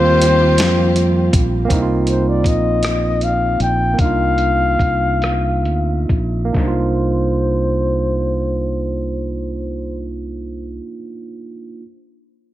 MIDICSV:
0, 0, Header, 1, 6, 480
1, 0, Start_track
1, 0, Key_signature, -3, "minor"
1, 0, Tempo, 746269
1, 1093, Time_signature, 6, 3, 24, 8
1, 2062, Tempo, 795756
1, 3022, Tempo, 848656
1, 3502, Tempo, 921659
1, 7091, End_track
2, 0, Start_track
2, 0, Title_t, "Flugelhorn"
2, 0, Program_c, 0, 56
2, 0, Note_on_c, 0, 72, 106
2, 864, Note_off_c, 0, 72, 0
2, 1347, Note_on_c, 0, 72, 62
2, 1472, Note_on_c, 0, 74, 68
2, 1482, Note_off_c, 0, 72, 0
2, 1591, Note_on_c, 0, 75, 75
2, 1600, Note_off_c, 0, 74, 0
2, 2080, Note_on_c, 0, 77, 74
2, 2089, Note_off_c, 0, 75, 0
2, 2304, Note_off_c, 0, 77, 0
2, 2313, Note_on_c, 0, 79, 82
2, 2541, Note_on_c, 0, 77, 100
2, 2550, Note_off_c, 0, 79, 0
2, 3736, Note_off_c, 0, 77, 0
2, 3979, Note_on_c, 0, 72, 73
2, 5817, Note_off_c, 0, 72, 0
2, 7091, End_track
3, 0, Start_track
3, 0, Title_t, "Tine electric piano"
3, 0, Program_c, 1, 4
3, 0, Control_c, 1, 64, 127
3, 0, Note_on_c, 1, 55, 71
3, 0, Note_on_c, 1, 58, 68
3, 0, Note_on_c, 1, 60, 64
3, 0, Note_on_c, 1, 65, 82
3, 1052, Note_off_c, 1, 55, 0
3, 1053, Note_off_c, 1, 58, 0
3, 1061, Note_on_c, 1, 58, 73
3, 1074, Note_off_c, 1, 60, 0
3, 1082, Note_on_c, 1, 60, 63
3, 1088, Note_off_c, 1, 65, 0
3, 1102, Control_c, 1, 64, 0
3, 1109, Note_on_c, 1, 63, 72
3, 1132, Note_on_c, 1, 64, 57
3, 1155, Note_off_c, 1, 64, 0
3, 1173, Note_on_c, 1, 65, 70
3, 1223, Control_c, 1, 64, 127
3, 2493, Note_off_c, 1, 58, 0
3, 2503, Note_off_c, 1, 60, 0
3, 2503, Note_on_c, 1, 58, 59
3, 2516, Note_off_c, 1, 63, 0
3, 2530, Note_on_c, 1, 62, 47
3, 2546, Note_off_c, 1, 65, 0
3, 2549, Note_on_c, 1, 63, 55
3, 2574, Note_on_c, 1, 65, 57
3, 3915, Note_off_c, 1, 58, 0
3, 3921, Note_on_c, 1, 58, 66
3, 3948, Note_off_c, 1, 62, 0
3, 3956, Note_off_c, 1, 63, 0
3, 3960, Note_on_c, 1, 62, 58
3, 3967, Note_off_c, 1, 65, 0
3, 3977, Control_c, 1, 64, 0
3, 3997, Note_on_c, 1, 63, 54
3, 4039, Note_on_c, 1, 65, 73
3, 4079, Control_c, 1, 64, 127
3, 6152, Note_off_c, 1, 58, 0
3, 6172, Note_off_c, 1, 62, 0
3, 6190, Note_off_c, 1, 63, 0
3, 6211, Note_off_c, 1, 65, 0
3, 6726, Control_c, 1, 64, 0
3, 7091, End_track
4, 0, Start_track
4, 0, Title_t, "String section"
4, 0, Program_c, 2, 48
4, 0, Note_on_c, 2, 51, 85
4, 0, Note_on_c, 2, 58, 76
4, 0, Note_on_c, 2, 60, 67
4, 0, Note_on_c, 2, 65, 73
4, 0, Note_on_c, 2, 67, 87
4, 1063, Note_off_c, 2, 58, 0
4, 1071, Note_off_c, 2, 51, 0
4, 1071, Note_off_c, 2, 60, 0
4, 1071, Note_off_c, 2, 65, 0
4, 1071, Note_off_c, 2, 67, 0
4, 7091, End_track
5, 0, Start_track
5, 0, Title_t, "Fingered electric bass"
5, 0, Program_c, 3, 33
5, 0, Note_on_c, 3, 39, 113
5, 382, Note_off_c, 3, 39, 0
5, 382, Note_on_c, 3, 41, 101
5, 831, Note_off_c, 3, 41, 0
5, 860, Note_on_c, 3, 34, 89
5, 1072, Note_off_c, 3, 34, 0
5, 1099, Note_on_c, 3, 36, 98
5, 1574, Note_off_c, 3, 36, 0
5, 1574, Note_on_c, 3, 34, 79
5, 2271, Note_off_c, 3, 34, 0
5, 2299, Note_on_c, 3, 34, 84
5, 2511, Note_off_c, 3, 34, 0
5, 2535, Note_on_c, 3, 36, 81
5, 2999, Note_off_c, 3, 36, 0
5, 3024, Note_on_c, 3, 36, 85
5, 3506, Note_off_c, 3, 36, 0
5, 3506, Note_on_c, 3, 38, 72
5, 3713, Note_off_c, 3, 38, 0
5, 3736, Note_on_c, 3, 34, 65
5, 3951, Note_off_c, 3, 34, 0
5, 3972, Note_on_c, 3, 36, 76
5, 6178, Note_off_c, 3, 36, 0
5, 7091, End_track
6, 0, Start_track
6, 0, Title_t, "Drums"
6, 138, Note_on_c, 9, 42, 82
6, 203, Note_off_c, 9, 42, 0
6, 373, Note_on_c, 9, 42, 79
6, 385, Note_on_c, 9, 38, 120
6, 437, Note_off_c, 9, 42, 0
6, 449, Note_off_c, 9, 38, 0
6, 616, Note_on_c, 9, 42, 47
6, 681, Note_off_c, 9, 42, 0
6, 856, Note_on_c, 9, 36, 99
6, 858, Note_on_c, 9, 42, 78
6, 921, Note_off_c, 9, 36, 0
6, 923, Note_off_c, 9, 42, 0
6, 1093, Note_on_c, 9, 36, 102
6, 1096, Note_on_c, 9, 42, 77
6, 1158, Note_off_c, 9, 36, 0
6, 1160, Note_off_c, 9, 42, 0
6, 1330, Note_on_c, 9, 42, 50
6, 1395, Note_off_c, 9, 42, 0
6, 1571, Note_on_c, 9, 36, 71
6, 1581, Note_on_c, 9, 42, 48
6, 1636, Note_off_c, 9, 36, 0
6, 1645, Note_off_c, 9, 42, 0
6, 1818, Note_on_c, 9, 42, 59
6, 1830, Note_on_c, 9, 37, 91
6, 1883, Note_off_c, 9, 42, 0
6, 1894, Note_off_c, 9, 37, 0
6, 2066, Note_on_c, 9, 42, 38
6, 2126, Note_off_c, 9, 42, 0
6, 2300, Note_on_c, 9, 42, 43
6, 2360, Note_off_c, 9, 42, 0
6, 2533, Note_on_c, 9, 36, 103
6, 2534, Note_on_c, 9, 42, 66
6, 2593, Note_off_c, 9, 36, 0
6, 2594, Note_off_c, 9, 42, 0
6, 2770, Note_on_c, 9, 42, 46
6, 2830, Note_off_c, 9, 42, 0
6, 3020, Note_on_c, 9, 36, 71
6, 3026, Note_on_c, 9, 42, 44
6, 3076, Note_off_c, 9, 36, 0
6, 3083, Note_off_c, 9, 42, 0
6, 3260, Note_on_c, 9, 42, 57
6, 3271, Note_on_c, 9, 37, 94
6, 3317, Note_off_c, 9, 42, 0
6, 3327, Note_off_c, 9, 37, 0
6, 3506, Note_on_c, 9, 42, 36
6, 3558, Note_off_c, 9, 42, 0
6, 3735, Note_on_c, 9, 36, 79
6, 3738, Note_on_c, 9, 42, 44
6, 3787, Note_off_c, 9, 36, 0
6, 3790, Note_off_c, 9, 42, 0
6, 3970, Note_on_c, 9, 36, 76
6, 3970, Note_on_c, 9, 46, 68
6, 3981, Note_on_c, 9, 38, 77
6, 4022, Note_off_c, 9, 36, 0
6, 4022, Note_off_c, 9, 46, 0
6, 4033, Note_off_c, 9, 38, 0
6, 7091, End_track
0, 0, End_of_file